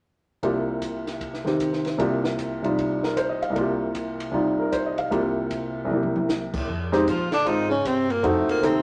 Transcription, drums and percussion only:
0.43 kick, ride
0.82 kick, hi-hat pedal, ride
1.07 snare, ride
1.21 kick, ride
1.34 snare
1.46 snare
1.60 kick, hi-hat pedal, ride
1.73 snare
1.85 snare, ride
1.99 kick, ride
2.24 snare
2.38 kick, hi-hat pedal, ride
2.64 ride
2.78 kick, ride
3.03 snare
3.17 kick, hi-hat pedal, ride
3.43 ride
3.56 kick, ride
3.95 kick, hi-hat pedal, ride
4.20 ride
4.34 kick
4.72 kick, hi-hat pedal, ride
4.98 ride
5.12 kick, ride
5.51 kick, hi-hat pedal, ride
5.90 high tom
6.03 high tom
6.16 high tom
6.29 snare, hi-hat pedal
6.54 kick, crash
6.68 kick
6.93 snare
7.07 kick, hi-hat pedal, ride
7.32 snare, ride
7.46 kick, ride
7.85 kick, hi-hat pedal, ride
8.10 ride
8.24 kick, ride
8.49 ride
8.63 kick, hi-hat pedal, ride

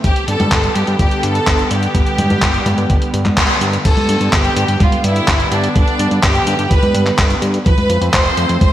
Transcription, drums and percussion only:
0.04 kick, closed hi-hat
0.16 closed hi-hat
0.28 closed hi-hat
0.40 closed hi-hat, high conga
0.52 kick, clap, closed hi-hat
0.64 closed hi-hat
0.75 closed hi-hat
0.87 closed hi-hat
0.99 kick, closed hi-hat
1.11 closed hi-hat
1.23 closed hi-hat
1.35 closed hi-hat
1.47 kick, clap, closed hi-hat
1.59 closed hi-hat
1.71 closed hi-hat
1.83 closed hi-hat
1.95 kick, closed hi-hat
2.06 closed hi-hat
2.18 closed hi-hat, high conga
2.30 closed hi-hat, high conga
2.42 kick, clap, closed hi-hat
2.54 closed hi-hat
2.66 closed hi-hat, high conga
2.78 closed hi-hat
2.90 kick, closed hi-hat
3.02 closed hi-hat
3.14 closed hi-hat
3.26 clap, closed hi-hat, high conga
3.37 kick, clap, closed hi-hat
3.49 closed hi-hat
3.61 closed hi-hat
3.73 closed hi-hat
3.85 kick, closed hi-hat, crash
3.97 closed hi-hat, high conga
4.09 closed hi-hat
4.21 closed hi-hat
4.33 kick, clap, closed hi-hat
4.45 closed hi-hat
4.57 closed hi-hat
4.68 closed hi-hat
4.80 kick, closed hi-hat, high conga
4.92 closed hi-hat
5.04 closed hi-hat
5.16 closed hi-hat
5.28 kick, clap, closed hi-hat
5.40 closed hi-hat
5.52 closed hi-hat
5.64 closed hi-hat
5.76 kick, closed hi-hat
5.88 closed hi-hat
5.99 closed hi-hat
6.11 closed hi-hat
6.23 kick, clap, closed hi-hat
6.35 closed hi-hat
6.47 closed hi-hat
6.59 closed hi-hat
6.71 kick, closed hi-hat
6.83 closed hi-hat, high conga
6.95 closed hi-hat
7.06 clap, closed hi-hat
7.18 kick, clap, closed hi-hat
7.30 closed hi-hat
7.42 closed hi-hat
7.54 closed hi-hat
7.66 kick, closed hi-hat
7.78 closed hi-hat, high conga
7.90 closed hi-hat
8.02 closed hi-hat
8.14 kick, clap, closed hi-hat
8.26 closed hi-hat
8.37 closed hi-hat
8.49 closed hi-hat
8.61 kick, closed hi-hat, high conga

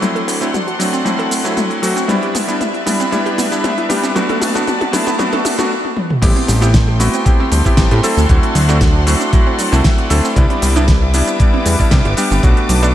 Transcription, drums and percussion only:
0.02 closed hi-hat, mid tom, cabasa
0.16 closed hi-hat
0.28 open hi-hat, cabasa
0.42 closed hi-hat, cabasa
0.54 closed hi-hat, mid tom, cabasa
0.68 closed hi-hat
0.80 open hi-hat, cabasa
0.94 closed hi-hat, cabasa
1.06 closed hi-hat, mid tom, cabasa
1.19 closed hi-hat
1.31 open hi-hat, cabasa
1.45 closed hi-hat, cabasa
1.57 closed hi-hat, mid tom, cabasa
1.71 closed hi-hat
1.83 open hi-hat, cabasa
1.97 closed hi-hat, cabasa
2.09 closed hi-hat, mid tom, cabasa
2.23 closed hi-hat
2.35 open hi-hat, mid tom, cabasa
2.49 closed hi-hat, cabasa
2.61 closed hi-hat, mid tom, cabasa
2.74 closed hi-hat
2.87 open hi-hat, mid tom, cabasa
3.00 closed hi-hat, cabasa
3.12 closed hi-hat, mid tom, cabasa
3.26 closed hi-hat
3.38 open hi-hat, mid tom, cabasa
3.52 closed hi-hat, cabasa
3.64 closed hi-hat, mid tom, cabasa
3.78 closed hi-hat
3.90 open hi-hat, mid tom, cabasa
4.04 closed hi-hat, cabasa
4.16 closed hi-hat, mid tom, cabasa
4.29 closed hi-hat, mid tom
4.42 open hi-hat, mid tom, cabasa
4.55 closed hi-hat, mid tom, cabasa
4.67 closed hi-hat, mid tom, cabasa
4.81 closed hi-hat, mid tom
4.93 open hi-hat, mid tom, cabasa
5.07 closed hi-hat, mid tom, cabasa
5.19 closed hi-hat, mid tom, cabasa
5.33 closed hi-hat, mid tom
5.45 open hi-hat, mid tom, cabasa
5.59 closed hi-hat, mid tom, cabasa
5.85 high tom
5.97 mid tom
6.10 mid tom
6.22 kick, closed hi-hat, crash, cabasa
6.36 closed hi-hat
6.48 open hi-hat, cabasa
6.62 closed hi-hat, cabasa
6.74 kick, snare, closed hi-hat, cabasa
7.00 open hi-hat, cabasa
7.14 closed hi-hat, cabasa
7.26 kick, closed hi-hat, cabasa
7.52 open hi-hat, cabasa
7.65 kick, cabasa
7.77 kick, snare, closed hi-hat, cabasa
7.91 closed hi-hat
8.03 open hi-hat, cabasa
8.18 cabasa
8.29 kick, closed hi-hat, cabasa
8.43 closed hi-hat
8.55 open hi-hat, cabasa
8.69 closed hi-hat, cabasa
8.81 kick, snare, closed hi-hat, cabasa
9.07 open hi-hat, cabasa
9.21 closed hi-hat, cabasa
9.33 kick, closed hi-hat, cabasa
9.59 open hi-hat, cabasa
9.73 cabasa
9.84 kick, snare, closed hi-hat, cabasa
9.98 closed hi-hat
10.10 open hi-hat, cabasa
10.25 cabasa
10.36 kick, closed hi-hat, cabasa
10.50 closed hi-hat
10.62 open hi-hat, cabasa
10.76 closed hi-hat, cabasa
10.88 kick, snare, closed hi-hat, cabasa
11.14 open hi-hat, cabasa
11.27 closed hi-hat, cabasa
11.40 kick, closed hi-hat, cabasa
11.66 open hi-hat, cabasa
11.79 kick, cabasa
11.91 kick, snare, closed hi-hat, cabasa
12.05 closed hi-hat
12.17 open hi-hat, cabasa
12.32 cabasa
12.43 kick, closed hi-hat, cabasa
12.57 closed hi-hat
12.69 open hi-hat, cabasa
12.83 closed hi-hat, cabasa

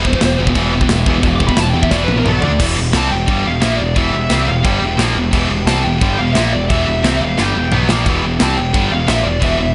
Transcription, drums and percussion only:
0.05 kick
0.13 kick
0.21 snare, china
0.47 kick
0.55 kick, china
0.81 kick
0.89 snare, china
1.06 kick
1.23 kick, china
1.40 kick
1.49 kick
1.57 snare, china
1.83 kick
1.91 kick, snare
2.08 high tom
2.26 mid tom
2.42 floor tom
2.60 kick, crash
2.93 snare, crash
3.28 kick, crash
3.62 snare, crash
3.96 kick, crash
4.30 snare, crash
4.65 kick, crash
4.99 snare, crash
5.33 kick, crash
5.67 snare, crash
6.01 kick, crash
6.35 snare, crash
6.70 kick, crash
7.04 snare, crash
7.38 snare
7.72 mid tom
7.89 snare
8.06 kick, crash
8.40 snare, crash
8.74 kick, crash
9.08 snare, crash
9.42 kick, crash

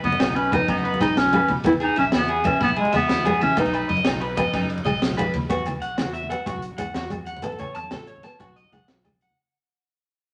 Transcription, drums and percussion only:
0.04 ride, low conga
0.12 muted conga, high conga
0.20 snare, ride, low agogo
0.29 low conga
0.36 ride, low conga
0.52 kick, ride, muted conga, high conga, low conga, low agogo
0.68 kick, ride, low agogo
0.78 low conga
0.85 ride
0.94 muted conga, high conga
1.01 kick, snare, ride, low conga, low agogo
1.17 snare, ride
1.26 low conga
1.33 ride, muted conga, high conga, low agogo
1.48 ride, low conga
1.64 kick, ride, muted conga, low agogo
1.73 high conga, low conga
1.80 ride, low agogo
1.96 ride, low conga
2.05 high conga
2.12 snare, ride, low agogo
2.20 low conga
2.28 ride, low conga
2.44 kick, ride, muted conga, high conga, low conga, low agogo
2.61 kick, ride, low agogo
2.69 low conga
2.76 ride
2.85 muted conga
2.93 snare, ride, low conga, low agogo
3.09 snare, ride
3.18 low conga
3.25 ride, muted conga, high conga, low agogo
3.41 ride, low conga
3.57 kick, ride, muted conga, low agogo
3.66 high conga, low conga
3.74 ride, low agogo
3.89 ride, low conga
3.97 muted conga, high conga
4.05 snare, ride, low agogo
4.13 low conga
4.21 ride
4.37 kick, ride, muted conga, high conga, low conga, low agogo
4.53 kick, ride, low agogo
4.62 low conga
4.70 ride
4.78 muted conga, high conga
4.85 kick, ride, low conga, low agogo
5.02 snare, ride
5.10 low conga
5.18 ride, muted conga, high conga, low agogo
5.34 ride, low conga
5.50 kick, closed hi-hat, muted conga, low agogo
5.59 high conga, low conga
5.66 closed hi-hat, low conga, low agogo
5.76 low conga
5.82 closed hi-hat
5.98 snare, closed hi-hat, muted conga, low conga, low agogo
6.14 closed hi-hat
6.23 low conga
6.30 closed hi-hat, high conga, low agogo
6.46 kick, closed hi-hat, muted conga, low conga, low agogo
6.56 low conga
6.62 closed hi-hat, low conga
6.71 high conga
6.78 kick, closed hi-hat, low conga, low agogo
6.88 low conga
6.94 snare, closed hi-hat, muted conga
7.05 low conga
7.10 kick, closed hi-hat, high conga, low agogo
7.26 closed hi-hat
7.37 low conga
7.42 kick, closed hi-hat, muted conga, low agogo
7.52 high conga, low conga
7.58 closed hi-hat, low conga, low agogo
7.68 low conga
7.75 closed hi-hat
7.84 high conga
7.91 snare, closed hi-hat, muted conga, low conga, low agogo
8.07 closed hi-hat
8.16 low conga
8.23 snare, closed hi-hat, high conga, low agogo
8.40 kick, closed hi-hat, muted conga, low conga, low agogo
8.48 low conga
8.56 closed hi-hat, low conga
8.64 high conga
8.72 closed hi-hat, low conga, low agogo
8.81 low conga
8.88 snare, closed hi-hat, muted conga
8.97 low conga
9.05 closed hi-hat, high conga, low conga, low agogo
9.21 closed hi-hat
9.30 low conga

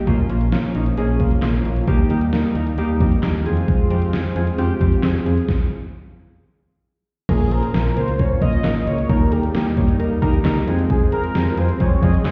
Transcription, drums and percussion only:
0.07 kick, closed hi-hat
0.30 closed hi-hat
0.41 closed hi-hat
0.52 snare, closed hi-hat
0.75 closed hi-hat
0.86 closed hi-hat
0.97 closed hi-hat
1.20 kick, closed hi-hat
1.31 closed hi-hat
1.42 snare, clap, closed hi-hat
1.65 closed hi-hat
1.76 closed hi-hat
1.87 kick, closed hi-hat
2.10 closed hi-hat
2.21 closed hi-hat
2.33 snare, closed hi-hat
2.55 closed hi-hat
2.67 closed hi-hat
2.78 closed hi-hat
3.00 kick, closed hi-hat
3.12 closed hi-hat
3.23 snare, clap, closed hi-hat
3.46 closed hi-hat
3.57 closed hi-hat
3.68 kick, closed hi-hat
3.90 closed hi-hat
4.02 closed hi-hat
4.13 snare, closed hi-hat
4.36 closed hi-hat
4.47 closed hi-hat
4.58 closed hi-hat
4.81 kick, closed hi-hat
4.92 closed hi-hat
5.03 snare, clap, closed hi-hat
5.26 closed hi-hat
5.37 closed hi-hat
5.49 kick, snare
7.29 kick, closed hi-hat, crash
7.51 closed hi-hat
7.63 closed hi-hat
7.74 snare, closed hi-hat
7.97 closed hi-hat
8.08 closed hi-hat
8.19 kick, closed hi-hat
8.42 kick, closed hi-hat
8.53 closed hi-hat
8.64 snare, clap, closed hi-hat
8.87 closed hi-hat
8.98 closed hi-hat
9.09 kick, closed hi-hat
9.32 closed hi-hat
9.43 closed hi-hat
9.55 snare, closed hi-hat
9.77 kick, closed hi-hat
9.88 closed hi-hat
10.00 closed hi-hat
10.22 kick, closed hi-hat
10.34 closed hi-hat
10.45 snare, clap, closed hi-hat
10.68 closed hi-hat
10.79 closed hi-hat
10.90 kick, closed hi-hat
11.12 closed hi-hat
11.24 closed hi-hat
11.35 snare, closed hi-hat
11.57 closed hi-hat
11.69 closed hi-hat
11.80 kick, closed hi-hat
12.03 kick, closed hi-hat
12.14 closed hi-hat
12.25 snare, clap, closed hi-hat

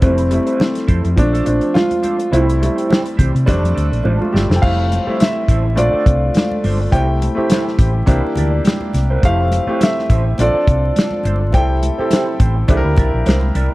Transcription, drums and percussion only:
0.02 kick, closed hi-hat
0.18 closed hi-hat
0.31 closed hi-hat, muted conga
0.47 closed hi-hat
0.60 snare, high conga
0.75 snare, closed hi-hat
0.88 kick, closed hi-hat
1.05 closed hi-hat
1.17 kick, closed hi-hat, muted conga
1.35 closed hi-hat
1.46 closed hi-hat
1.61 closed hi-hat
1.75 snare, high conga
1.91 closed hi-hat, high conga
2.03 closed hi-hat, high conga
2.20 closed hi-hat
2.33 closed hi-hat, muted conga
2.50 closed hi-hat
2.63 closed hi-hat, muted conga
2.78 closed hi-hat
2.90 snare, high conga
3.06 closed hi-hat
3.19 kick, closed hi-hat, low conga
3.36 closed hi-hat
3.47 kick, closed hi-hat, muted conga, low conga
3.65 closed hi-hat
3.78 closed hi-hat
3.93 closed hi-hat
4.05 high conga
4.22 high conga
4.34 snare, high conga
4.51 snare
4.63 kick, crash
4.92 closed hi-hat, muted conga
5.20 snare, closed hi-hat, high conga
5.48 kick, closed hi-hat
5.77 closed hi-hat, muted conga
6.06 kick, closed hi-hat
6.34 snare, closed hi-hat, high conga
6.51 high conga
6.63 open hi-hat, high conga
6.92 kick, closed hi-hat
7.22 closed hi-hat, muted conga
7.50 snare, closed hi-hat, high conga
7.68 snare
7.79 kick, closed hi-hat
8.07 kick, closed hi-hat, muted conga, low conga
8.36 closed hi-hat, low conga
8.65 snare, closed hi-hat, high conga
8.81 high conga
8.94 snare, closed hi-hat, high conga
9.23 kick, closed hi-hat
9.52 closed hi-hat, muted conga
9.81 snare, closed hi-hat, high conga
9.99 snare
10.10 kick, closed hi-hat
10.38 closed hi-hat, muted conga
10.68 kick, closed hi-hat
10.96 snare, closed hi-hat, high conga
11.11 high conga
11.24 closed hi-hat, high conga
11.53 kick, closed hi-hat, muted conga
11.83 closed hi-hat, muted conga
12.11 snare, closed hi-hat, high conga
12.40 kick, closed hi-hat
12.68 kick, closed hi-hat, muted conga, low conga
12.97 kick, closed hi-hat, low conga
13.26 snare, closed hi-hat, high conga
13.41 high conga
13.55 closed hi-hat

